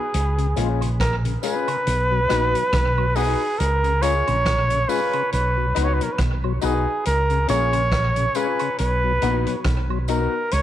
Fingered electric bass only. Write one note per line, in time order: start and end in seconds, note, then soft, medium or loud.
0.14 0.53 C#2 loud
0.58 1.35 A#1 loud
1.87 2.26 B1 loud
2.31 2.53 A#1 medium
2.73 3.34 B1 loud
3.60 4.21 C#2 loud
4.28 4.83 A#1 loud
5.33 5.72 B1 loud
5.77 5.98 C#2 medium
6.19 6.58 B1 loud
6.63 6.85 B1 medium
7.07 7.45 C#2 medium
7.50 8.27 A#1 loud
8.80 9.18 B1 loud
9.23 9.44 A#1 loud
9.65 10.26 B1 medium
10.53 10.62 C#2 loud